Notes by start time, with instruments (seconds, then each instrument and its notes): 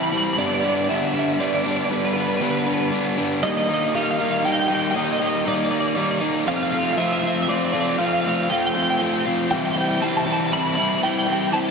Already playing: overdriven electric guitar E3 G3 C4 E4
0.03 clean electric guitar B5
0.10 overdriven electric guitar C4 E4, clean electric guitar B5
0.15 overdriven electric guitar E3 G3, clean electric guitar B5
0.24 clean electric guitar B5
0.33 clean electric guitar B5
0.38 overdriven electric guitar G2 D3 G3 B3 D4, clean electric guitar D5
0.46 clean electric guitar D5
0.54 clean electric guitar D5
0.60 overdriven electric guitar D4, clean electric guitar D5
0.65 overdriven electric guitar G3 B3
0.69 clean electric guitar D5
0.76 clean electric guitar D5
0.84 clean electric guitar D5
0.89 overdriven electric guitar G2 D3 G3 B3 D4, clean electric guitar E5
0.96 clean electric guitar E5
1.05 clean electric guitar E5
1.13 overdriven electric guitar G3 B3 D4, clean electric guitar E5
1.19 clean electric guitar E5
1.26 clean electric guitar E5
1.34 clean electric guitar E5
1.39 overdriven electric guitar D3 G3 B3 D4, clean electric guitar D5
1.47 clean electric guitar D5
1.54 clean electric guitar D5
1.63 overdriven electric guitar G2 D3 G3 B3 D4, clean electric guitar D5
1.71 clean electric guitar D5
1.77 clean electric guitar D5
1.85 clean electric guitar D5
1.90 overdriven electric guitar G2 D3 G3 B3 D4, clean electric guitar B4
1.97 clean electric guitar B4
2.05 clean electric guitar B4
2.13 overdriven electric guitar B3 D4, clean electric guitar B4
2.18 overdriven electric guitar G3, clean electric guitar B4
2.28 clean electric guitar B4
2.37 overdriven electric guitar G2, clean electric guitar B4
2.42 overdriven electric guitar D3 G3 B3 D4, clean electric guitar B4
2.51 clean electric guitar B4
2.59 clean electric guitar B4
2.66 overdriven electric guitar G3 B3 D4, clean electric guitar B4
2.74 clean electric guitar B4
2.81 clean electric guitar B4
2.92 overdriven electric guitar D3 G3 B3 D4
3.18 overdriven electric guitar G2 D3 G3 B3 D4
3.43 overdriven electric guitar D#3 G3 A#3 D#4, clean electric guitar D#5
3.50 clean electric guitar D#5
3.57 clean electric guitar D#5
3.65 overdriven electric guitar D#4, clean electric guitar D#5
3.70 overdriven electric guitar G3 A#3, clean electric guitar D#5
3.81 clean electric guitar D#5
3.88 clean electric guitar D#5
3.94 overdriven electric guitar D#3 G3 A#3 D#4, clean electric guitar F5
4.03 clean electric guitar F5
4.11 clean electric guitar F5
4.18 overdriven electric guitar A#3 D#4, clean electric guitar F5
4.22 overdriven electric guitar G3, clean electric guitar F5
4.31 clean electric guitar F5
4.39 clean electric guitar F5
4.45 overdriven electric guitar D#3 G3 A#3 D#4, clean electric guitar G5
4.52 clean electric guitar G5
4.59 clean electric guitar G5
4.68 overdriven electric guitar G3 A#3 D#4, clean electric guitar G5
4.72 overdriven electric guitar D#3, clean electric guitar G5
4.82 clean electric guitar G5
4.91 overdriven electric guitar D#3, clean electric guitar G5
4.95 overdriven electric guitar G3 A#3 D#4, clean electric guitar D#5
5.05 clean electric guitar D#5
5.12 clean electric guitar D#5
5.19 overdriven electric guitar A#3 D#4, clean electric guitar D#5
5.23 overdriven electric guitar G3
5.27 clean electric guitar D#5
5.35 clean electric guitar D#5
5.45 overdriven electric guitar D#3 G3 A#3 D#4, clean electric guitar D5
5.55 clean electric guitar D5
5.64 clean electric guitar D5
5.70 overdriven electric guitar G3 A#3 D#4, clean electric guitar D5
5.80 clean electric guitar D5
5.88 clean electric guitar D5
5.95 overdriven electric guitar D#3 G3 A#3 D#4, clean electric guitar D5
6.03 clean electric guitar D5
6.11 clean electric guitar D5
6.21 overdriven electric guitar D#3 G3 A#3 D#4
6.47 overdriven electric guitar F3 A3 C4 F4, clean electric guitar F5
6.56 clean electric guitar F5
6.63 clean electric guitar F5
6.71 overdriven electric guitar C4 F4, clean electric guitar F5
6.75 overdriven electric guitar A3, clean electric guitar F5
6.86 clean electric guitar F5
6.93 clean electric guitar F5
6.97 overdriven electric guitar F3 A3 C4 F4, clean electric guitar E5
7.04 clean electric guitar E5
7.13 clean electric guitar E5
7.19 clean electric guitar E5
7.23 overdriven electric guitar A3 C4 F4, clean electric guitar E5
7.34 clean electric guitar E5
7.42 clean electric guitar E5
7.48 overdriven electric guitar F3 A3 C4 F4, clean electric guitar D5
7.56 clean electric guitar D5
7.65 clean electric guitar D5
7.72 overdriven electric guitar A3 C4 F4, clean electric guitar D5
7.76 overdriven electric guitar F3
7.81 clean electric guitar D5
7.89 clean electric guitar D5
7.98 overdriven electric guitar F3 A3 C4 F4, clean electric guitar F5
8.06 clean electric guitar F5
8.13 clean electric guitar F5
8.21 overdriven electric guitar F4, clean electric guitar F5
8.26 overdriven electric guitar A3 C4, clean electric guitar F5
8.36 clean electric guitar F5
8.43 clean electric guitar F5
8.50 overdriven electric guitar F3 A3 C4 F4, clean electric guitar G5
8.59 clean electric guitar G5
8.66 clean electric guitar G5
8.75 overdriven electric guitar A3 C4 F4, clean electric guitar G5
8.82 clean electric guitar G5
8.90 clean electric guitar G5
8.99 overdriven electric guitar F3 A3 C4 F4, clean electric guitar G5
9.06 clean electric guitar G5
9.14 clean electric guitar G5
9.26 overdriven electric guitar F3 A3 C4 F4
9.51 overdriven electric guitar E3 G3 C4 E4, clean electric guitar G5
9.57 clean electric guitar G5
9.66 clean electric guitar G5
9.73 overdriven electric guitar E4, clean electric guitar G5
9.78 overdriven electric guitar G3 C4, clean electric guitar G5
9.89 clean electric guitar G5
9.96 clean electric guitar G5
10.02 overdriven electric guitar E3 G3 C4 E4, clean electric guitar A5
10.08 clean electric guitar A5
10.17 clean electric guitar A5
10.25 overdriven electric guitar C4 E4, clean electric guitar A5
10.29 overdriven electric guitar G3, clean electric guitar A5
10.40 clean electric guitar A5
10.46 clean electric guitar A5
10.52 overdriven electric guitar E3 G3 C4 E4, clean electric guitar B5
10.60 clean electric guitar B5
10.69 clean electric guitar B5
10.75 overdriven electric guitar G3 C4 E4, clean electric guitar B5
10.80 overdriven electric guitar E3, clean electric guitar B5
10.90 clean electric guitar B5
10.98 clean electric guitar B5
11.03 overdriven electric guitar E3 G3 C4 E4, clean electric guitar G5
11.10 clean electric guitar G5
11.19 clean electric guitar G5
11.26 overdriven electric guitar C4 E4, clean electric guitar G5
11.30 overdriven electric guitar G3, clean electric guitar G5
11.41 clean electric guitar G5
11.48 clean electric guitar G5
11.53 overdriven electric guitar E3 G3 C4 E4, clean electric guitar A5
11.61 clean electric guitar A5